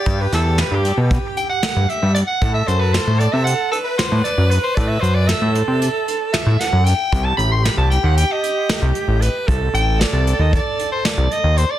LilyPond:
<<
  \new Staff \with { instrumentName = "Soprano saxophone" } { \time 9/8 \key a \dorian \tempo 4. = 76 d''16 b'16 a'8 b'16 g'8 r8. g''16 fis''8. e''8 d''16 fis''16~ | fis''16 e''16 c''16 b'16 c''8 d''16 e''16 fis''8 a'16 b'16 c''8 d''8 b'16 c''16 | d''16 e''16 c''16 d''16 e''8 r4. e''8 fis''8 g''8~ | g''16 a''16 b''16 c'''16 b''16 a''16 g''16 fis''16 g''16 ees''4 r4 r16 |
r8 g''8 d''8. ees''16 d''8. c''16 d''8 ees''8 c''16 d''16 | }
  \new Staff \with { instrumentName = "Alto saxophone" } { \time 9/8 \key a \dorian g'1 r8 | a'2~ a'8 b'2~ | b'4 a'2. r8 | g'1 b'8 |
a'1 r8 | }
  \new Staff \with { instrumentName = "Analog synth bass" } { \clef bass \time 9/8 \key a \dorian g,8 e,8. g,8 b,8 r4 g,16 r16 g,8 r16 | a,8 fis,8. a,8 c8 r4 a,16 r16 fis,8 r16 | a,8 fis,8. a,8 c8 r4 a,16 r16 fis,8 r16 | c,8 a,,8. c,8 ees,8 r4 c,16 r16 a,,8 r16 |
c,8 a,,8. c,8 ees,8 r4 c,16 r16 ees,8 r16 | }
  \new DrumStaff \with { instrumentName = "Drums" } \drummode { \time 9/8 <hh bd>8 <hh sn>8 <hh sn>8 hh8 <hh bd>8 hh8 <hh sn>8 hh8 hh8 | <hh bd>8 hh8 <hh sn>8 hh8 hh8 hh8 <hh sn>8 hh8 hh8 | <hh bd>8 hh8 <hh sn>8 hh8 hh8 hh8 <hh sn>8 <hh sn>8 hh8 | <hh bd>8 hh8 <hh sn>8 hh8 hh8 hh8 <hh sn>8 hh8 hh8 |
<hh bd>8 hh8 <hh sn>8 hh8 <hh bd>8 hh8 <hh sn>8 hh8 hh8 | }
>>